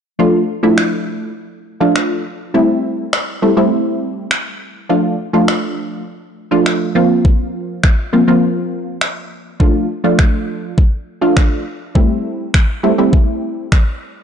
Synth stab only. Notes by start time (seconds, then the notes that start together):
0.19 F3 A3 D4 F4
0.63 F3 A3 D4 E4
1.80 F3 A3 D4 F4
2.54 G3 A3 C4 E4
3.42 G3 A3 C4 E4
3.57 G3 A3 C4 E4
4.89 F3 A3 D4 F4
5.33 F3 A3 D4 F4
6.51 F3 A3 D4 F4
6.95 F3 A#3 C4 F4
8.13 F3 A#3 C4 F4
8.28 F3 A#3 C4 F4
9.60 F3 A3 D4 F4
10.04 F3 A3 D4 F4
11.21 F3 A3 D4 F4
11.95 G3 A3 C4 E4
12.83 G3 A3 C4 E4
12.98 G3 A3 C4 E4